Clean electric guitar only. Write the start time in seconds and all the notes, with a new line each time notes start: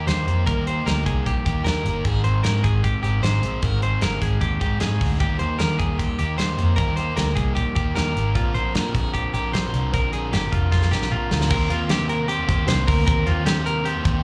0.07 C5
0.46 A#4
0.67 C5
0.86 A#4
1.06 G#4
1.27 G4
1.46 G4
1.64 A#4
2.04 G#4
2.24 C5
2.43 A#4
2.64 G#4
2.84 G4
3.03 G4
3.23 C5
3.63 A#4
3.83 C5
4.02 A#4
4.22 G#4
4.41 G4
4.61 G4
4.81 G#4
5.20 G4
5.39 C5
5.59 A#4
5.79 G#4
5.98 G4
6.19 G4
6.38 C5
6.76 A#4
6.96 C5
7.16 A#4
7.35 G#4
7.55 G4
7.75 G4
7.95 A#4
8.35 F4
8.54 C5
8.74 A#4
8.94 G#4
9.14 G4
9.34 G4
9.53 C5
9.94 A#4
10.13 G#4
10.33 G4
10.52 F4
10.72 F4
10.91 G4
11.12 F4
11.51 A#4
11.70 F4
11.90 G4
12.09 A#4
12.28 G4
12.68 C5
12.87 A#4
13.07 A#4
13.27 F4
13.46 G4
13.66 A#4
13.85 G4